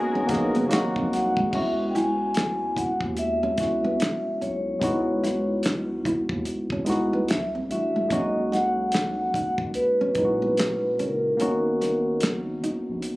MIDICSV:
0, 0, Header, 1, 8, 480
1, 0, Start_track
1, 0, Tempo, 821918
1, 892, Time_signature, 4, 2, 24, 8
1, 7687, End_track
2, 0, Start_track
2, 0, Title_t, "Vibraphone"
2, 0, Program_c, 0, 11
2, 0, Note_on_c, 0, 80, 103
2, 154, Note_off_c, 0, 80, 0
2, 425, Note_on_c, 0, 78, 91
2, 530, Note_off_c, 0, 78, 0
2, 665, Note_on_c, 0, 78, 96
2, 902, Note_on_c, 0, 76, 84
2, 906, Note_off_c, 0, 78, 0
2, 994, Note_off_c, 0, 76, 0
2, 1107, Note_on_c, 0, 79, 62
2, 1136, Note_off_c, 0, 79, 0
2, 1141, Note_on_c, 0, 80, 98
2, 1593, Note_off_c, 0, 80, 0
2, 1621, Note_on_c, 0, 78, 77
2, 1727, Note_off_c, 0, 78, 0
2, 1862, Note_on_c, 0, 76, 82
2, 2554, Note_off_c, 0, 76, 0
2, 2581, Note_on_c, 0, 73, 71
2, 3273, Note_off_c, 0, 73, 0
2, 4262, Note_on_c, 0, 76, 79
2, 4368, Note_off_c, 0, 76, 0
2, 4502, Note_on_c, 0, 76, 85
2, 4739, Note_on_c, 0, 75, 90
2, 4744, Note_off_c, 0, 76, 0
2, 4978, Note_on_c, 0, 78, 105
2, 4983, Note_off_c, 0, 75, 0
2, 5448, Note_off_c, 0, 78, 0
2, 5455, Note_on_c, 0, 78, 84
2, 5562, Note_off_c, 0, 78, 0
2, 5695, Note_on_c, 0, 71, 87
2, 6421, Note_on_c, 0, 70, 70
2, 6435, Note_off_c, 0, 71, 0
2, 7113, Note_off_c, 0, 70, 0
2, 7687, End_track
3, 0, Start_track
3, 0, Title_t, "String section"
3, 0, Program_c, 1, 48
3, 0, Note_on_c, 1, 56, 78
3, 0, Note_on_c, 1, 66, 68
3, 0, Note_on_c, 1, 68, 90
3, 0, Note_on_c, 1, 70, 69
3, 397, Note_off_c, 1, 68, 0
3, 398, Note_off_c, 1, 70, 0
3, 411, Note_on_c, 1, 60, 62
3, 869, Note_off_c, 1, 56, 0
3, 873, Note_off_c, 1, 66, 0
3, 887, Note_off_c, 1, 60, 0
3, 7687, End_track
4, 0, Start_track
4, 0, Title_t, "Nylon-string guitar"
4, 0, Program_c, 2, 24
4, 89, Note_on_c, 2, 61, 73
4, 140, Note_off_c, 2, 61, 0
4, 328, Note_on_c, 2, 59, 66
4, 380, Note_off_c, 2, 59, 0
4, 571, Note_on_c, 2, 60, 69
4, 622, Note_off_c, 2, 60, 0
4, 810, Note_on_c, 2, 56, 70
4, 861, Note_off_c, 2, 56, 0
4, 902, Note_on_c, 2, 61, 75
4, 984, Note_off_c, 2, 61, 0
4, 1139, Note_on_c, 2, 64, 73
4, 1222, Note_off_c, 2, 64, 0
4, 1617, Note_on_c, 2, 64, 62
4, 1701, Note_off_c, 2, 64, 0
4, 2003, Note_on_c, 2, 61, 67
4, 2057, Note_off_c, 2, 61, 0
4, 2245, Note_on_c, 2, 59, 63
4, 2298, Note_off_c, 2, 59, 0
4, 2577, Note_on_c, 2, 61, 60
4, 2661, Note_off_c, 2, 61, 0
4, 2819, Note_on_c, 2, 61, 80
4, 2902, Note_off_c, 2, 61, 0
4, 3057, Note_on_c, 2, 64, 69
4, 3141, Note_off_c, 2, 64, 0
4, 3537, Note_on_c, 2, 64, 64
4, 3620, Note_off_c, 2, 64, 0
4, 3926, Note_on_c, 2, 61, 62
4, 3978, Note_off_c, 2, 61, 0
4, 4165, Note_on_c, 2, 59, 62
4, 4218, Note_off_c, 2, 59, 0
4, 4408, Note_on_c, 2, 60, 64
4, 4460, Note_off_c, 2, 60, 0
4, 4648, Note_on_c, 2, 57, 64
4, 4700, Note_off_c, 2, 57, 0
4, 4741, Note_on_c, 2, 61, 83
4, 4823, Note_off_c, 2, 61, 0
4, 4982, Note_on_c, 2, 63, 71
4, 5064, Note_off_c, 2, 63, 0
4, 5461, Note_on_c, 2, 63, 64
4, 5543, Note_off_c, 2, 63, 0
4, 5845, Note_on_c, 2, 61, 64
4, 5898, Note_off_c, 2, 61, 0
4, 6085, Note_on_c, 2, 59, 69
4, 6138, Note_off_c, 2, 59, 0
4, 6421, Note_on_c, 2, 61, 60
4, 6503, Note_off_c, 2, 61, 0
4, 6661, Note_on_c, 2, 61, 79
4, 6743, Note_off_c, 2, 61, 0
4, 6898, Note_on_c, 2, 59, 70
4, 6981, Note_off_c, 2, 59, 0
4, 7379, Note_on_c, 2, 63, 63
4, 7462, Note_off_c, 2, 63, 0
4, 7687, End_track
5, 0, Start_track
5, 0, Title_t, "Tine electric piano"
5, 0, Program_c, 3, 4
5, 0, Control_c, 3, 64, 127
5, 0, Note_on_c, 3, 58, 71
5, 0, Note_on_c, 3, 59, 66
5, 0, Note_on_c, 3, 61, 63
5, 0, Note_on_c, 3, 63, 69
5, 0, Note_on_c, 3, 66, 80
5, 0, Note_on_c, 3, 68, 71
5, 80, Note_off_c, 3, 58, 0
5, 84, Note_off_c, 3, 59, 0
5, 87, Note_off_c, 3, 61, 0
5, 91, Note_off_c, 3, 63, 0
5, 94, Note_off_c, 3, 66, 0
5, 157, Note_on_c, 3, 58, 80
5, 163, Note_on_c, 3, 59, 76
5, 172, Note_on_c, 3, 61, 79
5, 177, Note_on_c, 3, 63, 75
5, 183, Note_off_c, 3, 68, 0
5, 183, Note_on_c, 3, 68, 93
5, 396, Note_off_c, 3, 58, 0
5, 397, Note_on_c, 3, 54, 101
5, 403, Note_on_c, 3, 58, 86
5, 408, Note_off_c, 3, 59, 0
5, 410, Note_off_c, 3, 63, 0
5, 410, Note_on_c, 3, 60, 82
5, 412, Note_off_c, 3, 61, 0
5, 417, Note_on_c, 3, 63, 89
5, 418, Note_off_c, 3, 68, 0
5, 420, Control_c, 3, 64, 0
5, 424, Note_on_c, 3, 66, 106
5, 526, Control_c, 3, 64, 127
5, 809, Note_off_c, 3, 54, 0
5, 813, Note_off_c, 3, 58, 0
5, 816, Note_off_c, 3, 60, 0
5, 819, Note_off_c, 3, 63, 0
5, 823, Note_off_c, 3, 66, 0
5, 881, Note_on_c, 3, 56, 80
5, 888, Note_on_c, 3, 59, 76
5, 894, Note_on_c, 3, 61, 71
5, 900, Control_c, 3, 64, 0
5, 901, Note_on_c, 3, 64, 69
5, 908, Note_on_c, 3, 66, 84
5, 998, Control_c, 3, 64, 127
5, 1638, Note_off_c, 3, 56, 0
5, 1641, Note_off_c, 3, 59, 0
5, 1644, Note_off_c, 3, 61, 0
5, 1648, Note_off_c, 3, 64, 0
5, 1651, Note_off_c, 3, 66, 0
5, 2077, Note_on_c, 3, 56, 58
5, 2084, Note_on_c, 3, 59, 55
5, 2090, Note_on_c, 3, 61, 57
5, 2097, Note_on_c, 3, 64, 53
5, 2105, Note_on_c, 3, 66, 62
5, 2661, Note_off_c, 3, 56, 0
5, 2664, Note_off_c, 3, 59, 0
5, 2668, Note_off_c, 3, 61, 0
5, 2671, Note_off_c, 3, 64, 0
5, 2675, Note_off_c, 3, 66, 0
5, 2799, Note_on_c, 3, 56, 78
5, 2806, Note_on_c, 3, 59, 75
5, 2813, Note_on_c, 3, 63, 69
5, 2819, Note_on_c, 3, 64, 74
5, 2826, Note_on_c, 3, 66, 89
5, 3557, Note_off_c, 3, 56, 0
5, 3561, Note_off_c, 3, 59, 0
5, 3564, Note_off_c, 3, 63, 0
5, 3567, Note_off_c, 3, 64, 0
5, 3571, Note_off_c, 3, 66, 0
5, 3999, Note_on_c, 3, 56, 73
5, 4005, Note_on_c, 3, 59, 67
5, 4014, Note_on_c, 3, 63, 68
5, 4019, Note_on_c, 3, 64, 64
5, 4026, Note_on_c, 3, 66, 79
5, 4246, Note_off_c, 3, 56, 0
5, 4249, Note_off_c, 3, 59, 0
5, 4253, Note_off_c, 3, 63, 0
5, 4256, Note_off_c, 3, 64, 0
5, 4259, Note_off_c, 3, 66, 0
5, 4261, Control_c, 3, 64, 0
5, 4373, Control_c, 3, 64, 127
5, 4483, Note_on_c, 3, 55, 54
5, 4489, Note_on_c, 3, 57, 50
5, 4496, Note_on_c, 3, 62, 55
5, 4502, Note_on_c, 3, 64, 53
5, 4508, Note_on_c, 3, 66, 66
5, 4686, Note_off_c, 3, 55, 0
5, 4689, Note_off_c, 3, 57, 0
5, 4692, Note_off_c, 3, 62, 0
5, 4695, Note_off_c, 3, 64, 0
5, 4698, Note_off_c, 3, 66, 0
5, 4720, Note_on_c, 3, 56, 82
5, 4727, Note_on_c, 3, 58, 75
5, 4732, Note_on_c, 3, 61, 72
5, 4739, Control_c, 3, 64, 0
5, 4741, Note_on_c, 3, 63, 80
5, 4747, Note_on_c, 3, 66, 94
5, 4823, Control_c, 3, 64, 127
5, 5478, Note_off_c, 3, 56, 0
5, 5481, Note_off_c, 3, 58, 0
5, 5484, Note_off_c, 3, 61, 0
5, 5488, Note_off_c, 3, 63, 0
5, 5491, Note_off_c, 3, 66, 0
5, 5921, Note_on_c, 3, 56, 64
5, 5928, Note_on_c, 3, 46, 54
5, 5934, Note_on_c, 3, 61, 59
5, 5940, Note_on_c, 3, 63, 59
5, 5949, Note_on_c, 3, 64, 51
5, 5985, Note_on_c, 3, 66, 71
5, 5987, Note_off_c, 3, 64, 0
5, 6503, Note_off_c, 3, 56, 0
5, 6506, Note_off_c, 3, 46, 0
5, 6510, Note_off_c, 3, 61, 0
5, 6513, Note_off_c, 3, 63, 0
5, 6535, Note_off_c, 3, 66, 0
5, 6640, Note_on_c, 3, 58, 80
5, 6647, Note_on_c, 3, 59, 79
5, 6656, Note_on_c, 3, 61, 74
5, 6661, Control_c, 3, 64, 0
5, 6661, Note_on_c, 3, 63, 73
5, 6667, Note_on_c, 3, 66, 88
5, 6759, Control_c, 3, 64, 127
5, 7398, Note_off_c, 3, 58, 0
5, 7401, Note_off_c, 3, 59, 0
5, 7405, Note_off_c, 3, 61, 0
5, 7408, Note_off_c, 3, 63, 0
5, 7411, Note_off_c, 3, 66, 0
5, 7687, End_track
6, 0, Start_track
6, 0, Title_t, "Analog synth bass"
6, 0, Program_c, 4, 38
6, 88, Note_on_c, 4, 32, 80
6, 161, Note_off_c, 4, 32, 0
6, 176, Note_on_c, 4, 34, 77
6, 294, Note_off_c, 4, 34, 0
6, 330, Note_on_c, 4, 30, 103
6, 402, Note_off_c, 4, 30, 0
6, 422, Note_on_c, 4, 32, 101
6, 537, Note_off_c, 4, 32, 0
6, 566, Note_on_c, 4, 34, 93
6, 664, Note_on_c, 4, 36, 84
6, 673, Note_off_c, 4, 34, 0
6, 856, Note_off_c, 4, 36, 0
6, 899, Note_on_c, 4, 37, 105
6, 1592, Note_off_c, 4, 37, 0
6, 1620, Note_on_c, 4, 39, 42
6, 1676, Note_off_c, 4, 39, 0
6, 1761, Note_on_c, 4, 39, 81
6, 2033, Note_off_c, 4, 39, 0
6, 2096, Note_on_c, 4, 37, 81
6, 2291, Note_off_c, 4, 37, 0
6, 2584, Note_on_c, 4, 35, 80
6, 2776, Note_off_c, 4, 35, 0
6, 2817, Note_on_c, 4, 37, 104
6, 3512, Note_off_c, 4, 37, 0
6, 3541, Note_on_c, 4, 39, 41
6, 3597, Note_off_c, 4, 39, 0
6, 3681, Note_on_c, 4, 39, 88
6, 3757, Note_off_c, 4, 39, 0
6, 3919, Note_on_c, 4, 37, 42
6, 3956, Note_off_c, 4, 37, 0
6, 4024, Note_on_c, 4, 37, 76
6, 4216, Note_off_c, 4, 37, 0
6, 4264, Note_on_c, 4, 36, 90
6, 4456, Note_off_c, 4, 36, 0
6, 4503, Note_on_c, 4, 33, 84
6, 4695, Note_off_c, 4, 33, 0
6, 4738, Note_on_c, 4, 35, 109
6, 5432, Note_off_c, 4, 35, 0
6, 5460, Note_on_c, 4, 37, 44
6, 5517, Note_off_c, 4, 37, 0
6, 5600, Note_on_c, 4, 37, 87
6, 5676, Note_off_c, 4, 37, 0
6, 5847, Note_on_c, 4, 35, 49
6, 5882, Note_off_c, 4, 35, 0
6, 5934, Note_on_c, 4, 35, 80
6, 6130, Note_off_c, 4, 35, 0
6, 6423, Note_on_c, 4, 30, 81
6, 6615, Note_off_c, 4, 30, 0
6, 6662, Note_on_c, 4, 32, 99
6, 7354, Note_off_c, 4, 32, 0
6, 7386, Note_on_c, 4, 34, 43
6, 7441, Note_off_c, 4, 34, 0
6, 7530, Note_on_c, 4, 34, 83
6, 7602, Note_off_c, 4, 34, 0
6, 7687, End_track
7, 0, Start_track
7, 0, Title_t, "Muted nylon-string guitar strokes"
7, 183, Note_on_c, 9, 29, 43
7, 241, Note_off_c, 9, 29, 0
7, 663, Note_on_c, 9, 29, 43
7, 721, Note_off_c, 9, 29, 0
7, 2099, Note_on_c, 9, 29, 39
7, 2157, Note_off_c, 9, 29, 0
7, 4021, Note_on_c, 9, 29, 41
7, 4079, Note_off_c, 9, 29, 0
7, 4500, Note_on_c, 9, 29, 39
7, 4558, Note_off_c, 9, 29, 0
7, 5943, Note_on_c, 9, 29, 40
7, 6002, Note_off_c, 9, 29, 0
7, 7687, End_track
8, 0, Start_track
8, 0, Title_t, "Drums"
8, 168, Note_on_c, 9, 42, 70
8, 170, Note_on_c, 9, 36, 73
8, 191, Note_on_c, 9, 38, 35
8, 226, Note_off_c, 9, 42, 0
8, 228, Note_off_c, 9, 36, 0
8, 250, Note_off_c, 9, 38, 0
8, 320, Note_on_c, 9, 42, 44
8, 378, Note_off_c, 9, 42, 0
8, 413, Note_on_c, 9, 42, 84
8, 427, Note_on_c, 9, 38, 120
8, 432, Note_on_c, 9, 39, 96
8, 471, Note_off_c, 9, 42, 0
8, 485, Note_off_c, 9, 38, 0
8, 490, Note_off_c, 9, 39, 0
8, 561, Note_on_c, 9, 36, 89
8, 619, Note_off_c, 9, 36, 0
8, 661, Note_on_c, 9, 42, 72
8, 669, Note_on_c, 9, 38, 31
8, 720, Note_off_c, 9, 42, 0
8, 727, Note_off_c, 9, 38, 0
8, 798, Note_on_c, 9, 36, 92
8, 857, Note_off_c, 9, 36, 0
8, 893, Note_on_c, 9, 36, 89
8, 893, Note_on_c, 9, 49, 75
8, 951, Note_off_c, 9, 36, 0
8, 951, Note_off_c, 9, 49, 0
8, 1143, Note_on_c, 9, 42, 56
8, 1147, Note_on_c, 9, 38, 31
8, 1202, Note_off_c, 9, 42, 0
8, 1206, Note_off_c, 9, 38, 0
8, 1369, Note_on_c, 9, 42, 70
8, 1386, Note_on_c, 9, 38, 92
8, 1390, Note_on_c, 9, 39, 74
8, 1427, Note_off_c, 9, 42, 0
8, 1444, Note_off_c, 9, 38, 0
8, 1449, Note_off_c, 9, 39, 0
8, 1615, Note_on_c, 9, 36, 68
8, 1621, Note_on_c, 9, 42, 64
8, 1673, Note_off_c, 9, 36, 0
8, 1680, Note_off_c, 9, 42, 0
8, 1755, Note_on_c, 9, 36, 84
8, 1814, Note_off_c, 9, 36, 0
8, 1849, Note_on_c, 9, 42, 66
8, 1907, Note_off_c, 9, 42, 0
8, 2088, Note_on_c, 9, 42, 57
8, 2090, Note_on_c, 9, 36, 67
8, 2112, Note_on_c, 9, 38, 31
8, 2147, Note_off_c, 9, 42, 0
8, 2149, Note_off_c, 9, 36, 0
8, 2170, Note_off_c, 9, 38, 0
8, 2336, Note_on_c, 9, 42, 76
8, 2350, Note_on_c, 9, 38, 105
8, 2355, Note_on_c, 9, 39, 83
8, 2394, Note_off_c, 9, 42, 0
8, 2408, Note_off_c, 9, 38, 0
8, 2413, Note_off_c, 9, 39, 0
8, 2582, Note_on_c, 9, 42, 55
8, 2640, Note_off_c, 9, 42, 0
8, 2812, Note_on_c, 9, 36, 88
8, 2817, Note_on_c, 9, 42, 74
8, 2871, Note_off_c, 9, 36, 0
8, 2875, Note_off_c, 9, 42, 0
8, 3063, Note_on_c, 9, 42, 56
8, 3067, Note_on_c, 9, 38, 32
8, 3121, Note_off_c, 9, 42, 0
8, 3125, Note_off_c, 9, 38, 0
8, 3288, Note_on_c, 9, 42, 71
8, 3304, Note_on_c, 9, 38, 86
8, 3309, Note_on_c, 9, 39, 67
8, 3346, Note_off_c, 9, 42, 0
8, 3363, Note_off_c, 9, 38, 0
8, 3368, Note_off_c, 9, 39, 0
8, 3535, Note_on_c, 9, 36, 72
8, 3540, Note_on_c, 9, 42, 59
8, 3593, Note_off_c, 9, 36, 0
8, 3599, Note_off_c, 9, 42, 0
8, 3675, Note_on_c, 9, 36, 87
8, 3733, Note_off_c, 9, 36, 0
8, 3769, Note_on_c, 9, 42, 67
8, 3828, Note_off_c, 9, 42, 0
8, 3913, Note_on_c, 9, 36, 73
8, 3972, Note_off_c, 9, 36, 0
8, 4007, Note_on_c, 9, 42, 56
8, 4031, Note_on_c, 9, 38, 32
8, 4066, Note_off_c, 9, 42, 0
8, 4090, Note_off_c, 9, 38, 0
8, 4254, Note_on_c, 9, 42, 72
8, 4268, Note_on_c, 9, 38, 103
8, 4273, Note_on_c, 9, 39, 78
8, 4313, Note_off_c, 9, 42, 0
8, 4327, Note_off_c, 9, 38, 0
8, 4331, Note_off_c, 9, 39, 0
8, 4501, Note_on_c, 9, 42, 60
8, 4560, Note_off_c, 9, 42, 0
8, 4733, Note_on_c, 9, 36, 93
8, 4737, Note_on_c, 9, 42, 79
8, 4791, Note_off_c, 9, 36, 0
8, 4796, Note_off_c, 9, 42, 0
8, 4984, Note_on_c, 9, 42, 61
8, 4988, Note_on_c, 9, 38, 31
8, 5042, Note_off_c, 9, 42, 0
8, 5046, Note_off_c, 9, 38, 0
8, 5208, Note_on_c, 9, 42, 73
8, 5225, Note_on_c, 9, 38, 87
8, 5230, Note_on_c, 9, 39, 71
8, 5267, Note_off_c, 9, 42, 0
8, 5283, Note_off_c, 9, 38, 0
8, 5288, Note_off_c, 9, 39, 0
8, 5455, Note_on_c, 9, 36, 78
8, 5463, Note_on_c, 9, 42, 62
8, 5514, Note_off_c, 9, 36, 0
8, 5521, Note_off_c, 9, 42, 0
8, 5595, Note_on_c, 9, 36, 89
8, 5653, Note_off_c, 9, 36, 0
8, 5688, Note_on_c, 9, 42, 63
8, 5747, Note_off_c, 9, 42, 0
8, 5926, Note_on_c, 9, 42, 57
8, 5929, Note_on_c, 9, 36, 68
8, 5984, Note_off_c, 9, 42, 0
8, 5988, Note_off_c, 9, 36, 0
8, 6175, Note_on_c, 9, 42, 75
8, 6189, Note_on_c, 9, 38, 98
8, 6194, Note_on_c, 9, 39, 85
8, 6234, Note_off_c, 9, 42, 0
8, 6248, Note_off_c, 9, 38, 0
8, 6252, Note_off_c, 9, 39, 0
8, 6420, Note_on_c, 9, 42, 59
8, 6479, Note_off_c, 9, 42, 0
8, 6656, Note_on_c, 9, 42, 75
8, 6714, Note_off_c, 9, 42, 0
8, 6902, Note_on_c, 9, 42, 61
8, 6906, Note_on_c, 9, 38, 29
8, 6960, Note_off_c, 9, 42, 0
8, 6964, Note_off_c, 9, 38, 0
8, 7128, Note_on_c, 9, 42, 77
8, 7144, Note_on_c, 9, 38, 88
8, 7149, Note_on_c, 9, 39, 72
8, 7186, Note_off_c, 9, 42, 0
8, 7203, Note_off_c, 9, 38, 0
8, 7208, Note_off_c, 9, 39, 0
8, 7380, Note_on_c, 9, 42, 62
8, 7438, Note_off_c, 9, 42, 0
8, 7606, Note_on_c, 9, 42, 59
8, 7664, Note_off_c, 9, 42, 0
8, 7687, End_track
0, 0, End_of_file